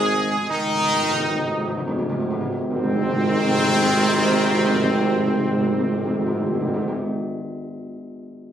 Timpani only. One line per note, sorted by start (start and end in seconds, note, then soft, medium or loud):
0.04 0.11 G#2 medium
0.12 0.20 G#2 medium
0.21 0.29 G#2 medium
0.30 0.37 G#2 medium
0.39 0.47 G#2 medium
0.48 0.55 G#2 medium
0.57 0.63 G#2 medium
0.65 0.73 G#2 medium
0.74 0.82 G#2 medium
0.83 0.91 G#2 medium
0.92 1.00 G#2 loud
1.01 1.09 G#2 medium
1.11 1.18 G#2 loud
1.19 1.28 G#2 loud
1.29 1.37 G#2 loud
1.38 1.47 G#2 loud
1.48 1.57 G#2 loud
1.58 1.66 G#2 loud
1.68 1.76 G#2 loud
1.77 1.87 G#2 loud
1.88 1.97 G#2 loud
1.99 2.08 G#2 loud
2.10 2.19 G#2 loud
2.20 2.29 G#2 loud
2.31 2.40 G#2 loud
2.41 2.51 G#2 loud
2.52 2.62 G#2 loud
2.71 2.77 G#2 loud
2.77 2.84 G#2 loud
2.84 2.90 G#2 loud
2.90 2.96 G#2 loud
2.96 3.02 G#2 loud
3.02 3.09 G#2 loud
3.09 3.16 G#2 loud
3.16 3.22 G#2 loud
3.23 3.30 G#2 loud
3.30 3.37 G#2 loud
3.38 3.44 G#2 loud
3.44 3.51 G#2 loud
3.51 3.58 G#2 loud
3.58 3.64 G#2 loud
3.64 3.70 G#2 loud
3.70 3.77 G#2 medium
3.77 3.84 G#2 loud
3.84 3.90 G#2 loud
3.90 3.97 G#2 loud
3.97 4.03 G#2 medium
4.03 4.10 G#2 loud
4.10 4.16 G#2 loud
4.16 4.22 G#2 loud
4.22 4.29 G#2 loud
4.29 4.36 G#2 loud
4.36 4.43 G#2 loud
4.43 4.49 G#2 loud
4.49 4.55 G#2 loud
4.55 4.62 G#2 loud
4.63 4.69 G#2 medium
4.70 4.76 G#2 loud
4.76 4.83 G#2 loud
4.83 4.89 G#2 loud
4.89 4.96 G#2 loud
4.96 5.03 G#2 loud
5.03 5.10 G#2 medium
5.10 5.17 G#2 loud
5.18 5.24 G#2 loud
5.25 5.31 G#2 loud
5.31 5.38 G#2 medium
5.38 5.45 G#2 loud
5.45 5.51 G#2 loud
5.51 5.58 G#2 loud
5.59 5.65 G#2 loud
5.65 5.72 G#2 loud
5.72 5.79 G#2 loud
5.79 5.85 G#2 loud
5.85 5.92 G#2 medium
5.92 5.99 G#2 loud
5.99 6.05 G#2 loud
6.05 6.12 G#2 loud
6.12 6.19 G#2 loud
6.19 6.26 G#2 loud
6.27 6.33 G#2 loud
6.33 6.40 G#2 loud
6.40 6.47 G#2 loud
6.47 6.53 G#2 loud
6.54 6.61 G#2 loud
6.61 6.67 G#2 loud
6.67 6.74 G#2 loud
6.74 6.81 G#2 loud
6.81 6.87 G#2 loud
6.88 6.95 G#2 loud
6.95 7.02 G#2 medium